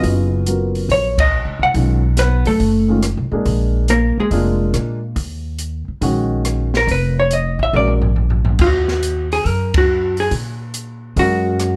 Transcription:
0.00 0.85 F#1 medium
0.00 0.43 C#3 medium
0.00 0.44 F#3 medium
0.00 0.44 B3 medium
0.00 0.44 F4 medium
0.00 kick soft
0.00 open hi-hat soft
0.46 1.12 F#3 soft
0.46 1.12 B3 soft
0.46 1.13 F4 soft
0.46 1.13 A#4 soft
0.46 closed hi-hat soft
0.75 open hi-hat soft
0.89 1.42 A#1 medium
0.89 1.18 C#5 medium
0.89 kick soft
0.89 open hi-hat soft
1.18 1.59 D#5 medium
1.18 kick medium
1.18 ride medium
1.45 1.59 C#2 medium
1.59 1.73 C2 medium
1.59 1.71 F#5 medium
1.74 2.42 B1 medium
1.74 2.00 D#3 soft
1.74 2.01 G#3 soft
1.74 2.01 C#4 soft
1.74 2.02 F4 soft
1.74 kick soft
1.74 open hi-hat soft
2.17 2.46 B3 soft
2.17 2.46 B4 medium
2.17 snare soft
2.17 closed hi-hat medium
2.45 2.59 F#2 medium
2.45 3.00 A3 medium
2.45 2.99 A4 medium
2.45 open hi-hat soft
2.60 3.13 F#1 medium
2.60 kick soft
2.60 open hi-hat soft
2.88 3.01 D#3 medium
2.88 3.01 G#3 soft
2.88 3.02 C#4 soft
2.88 3.02 F4 medium
3.03 cross-stick medium
3.03 closed hi-hat soft
3.17 3.30 B1 medium
3.31 3.45 A1 medium
3.31 3.85 G#3 medium
3.31 3.86 A#3 medium
3.31 3.86 D4 medium
3.31 3.86 G#4 medium
3.45 4.13 A#1 medium
3.45 kick soft
3.45 open hi-hat soft
3.88 4.17 A#3 medium
3.88 4.17 A#4 medium
3.88 closed hi-hat soft
4.17 4.71 G#3 medium
4.17 4.71 G#4 medium
4.17 muted upright bass stroke soft
4.31 4.71 F1 medium
4.31 4.96 G#3 medium
4.31 4.97 A#3 medium
4.31 4.97 D4 medium
4.31 4.97 F4 medium
4.31 kick soft
4.31 open hi-hat soft
4.74 5.13 A#2 medium
4.74 cross-stick medium
4.74 closed hi-hat soft
5.16 5.84 D#2 medium
5.16 kick soft
5.16 open hi-hat soft
5.59 closed hi-hat soft
5.88 muted upright bass stroke soft
6.01 6.83 A#1 medium
6.01 6.67 D#3 medium
6.01 6.68 G#3 medium
6.01 6.68 C#4 medium
6.01 6.68 F#4 medium
6.01 kick soft
6.01 open hi-hat soft
6.45 cross-stick medium
6.45 closed hi-hat soft
6.74 6.89 A#4 medium
6.74 snare soft
6.87 7.55 F1 medium
6.87 kick soft
6.87 open hi-hat soft
6.92 7.18 B4 medium
7.20 7.32 C#5 medium
7.31 7.60 D#5 medium
7.31 closed hi-hat soft
7.59 7.72 A1 medium
7.59 7.75 E5 medium
7.73 8.55 A#1 medium
7.73 7.99 G#3 soft
7.73 8.00 C#4 soft
7.73 8.00 F#4 medium
7.73 8.00 A#4 medium
7.73 7.93 D5 medium
7.73 mid tom soft
7.88 mid tom soft
8.02 floor tom medium
8.16 floor tom soft
8.30 floor tom medium
8.45 floor tom medium
8.59 9.41 D#2 medium
8.59 9.28 F#4 medium
8.59 kick medium
8.59 crash medium
8.88 snare soft
9.03 closed hi-hat medium
9.32 9.47 G#4 medium
9.32 open hi-hat soft
9.45 10.27 F#2 medium
9.45 9.74 A#4 medium
9.45 kick soft
9.45 open hi-hat soft
9.74 10.16 F#4 medium
9.74 kick medium
9.74 ride medium
10.17 10.32 G#4 medium
10.17 open hi-hat soft
10.31 11.13 A#2 medium
10.31 kick soft
10.31 open hi-hat soft
10.74 closed hi-hat soft
11.16 11.76 F#2 medium
11.16 11.76 G#3 medium
11.16 11.76 C#4 soft
11.16 11.76 F#4 soft
11.16 11.76 F#4 medium
11.16 11.76 A#4 medium
11.16 kick soft
11.16 open hi-hat soft
11.59 cross-stick medium
11.59 closed hi-hat soft

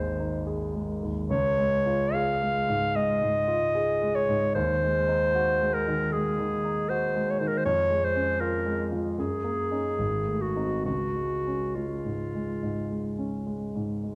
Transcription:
0.00 1.02 D#2 soft
0.00 0.74 G#3 soft
0.00 0.19 D#4 soft
0.00 0.47 G#4 soft
0.00 0.48 C5 medium
0.19 0.63 D#4 soft
0.47 0.91 G#4 soft
0.74 1.19 G#3 soft
1.02 1.30 D#2 soft
1.30 2.91 C#2 soft
1.30 2.15 C#5 medium
1.58 2.03 G#3 soft
1.86 2.31 F4 soft
2.13 2.58 G#4 soft
2.13 2.97 F5 medium
2.42 2.85 G#3 soft
2.68 3.11 G#2 soft
2.95 3.37 G#3 soft
2.95 4.17 D#5 medium
3.22 3.64 G#2 soft
3.48 3.90 F4 soft
3.75 4.18 G#4 soft
4.02 4.45 G#3 soft
4.15 4.54 C#5 medium
4.29 4.56 G#2 soft
4.55 6.08 D#2 soft
4.55 5.76 C5 medium
4.83 5.25 G#3 soft
5.08 5.50 D#4 soft
5.35 5.77 F#4 soft
5.61 6.02 G#3 soft
5.74 6.14 A#4 medium
5.87 6.28 D#3 soft
6.12 6.53 G#3 soft
6.12 6.91 G#4 medium
6.39 6.79 D#3 soft
6.64 7.04 D#4 soft
6.89 7.30 F#4 soft
6.89 7.32 C5 medium
7.15 7.55 G#3 soft
7.31 7.41 C#5 medium
7.39 7.65 D#3 soft
7.39 7.50 C5 medium
7.48 7.59 A#4 medium
7.58 7.65 C5 medium
7.65 9.14 F2 soft
7.65 8.06 C#5 medium
7.90 8.30 G#3 soft
8.04 8.42 C5 medium
8.16 8.56 C#4 soft
8.41 8.81 F4 soft
8.41 8.91 A#4 medium
8.66 9.07 G#3 soft
8.92 9.18 F3 soft
9.18 9.97 F#2 soft
9.18 10.43 G#4 medium
9.44 9.88 A#3 soft
9.71 9.96 C#4 soft
9.71 9.96 D#4 soft
9.99 10.83 G#1 soft
10.27 10.74 A3 soft
10.41 10.85 F#4 medium
10.56 10.83 C4 soft
10.56 10.83 D#4 soft
10.86 12.58 C#2 soft
10.86 11.77 F#4 medium
11.16 11.63 G#3 soft
11.47 11.93 C#4 soft
11.75 12.22 G#3 soft
11.75 13.46 F4 soft
12.05 12.51 G#2 soft
12.35 12.79 G#3 soft
12.63 13.07 G#2 soft
12.91 13.35 G#3 soft
13.18 13.63 C#4 soft
13.47 13.92 G#3 soft
13.75 14.15 G#2 soft
14.03 14.15 G#3 soft

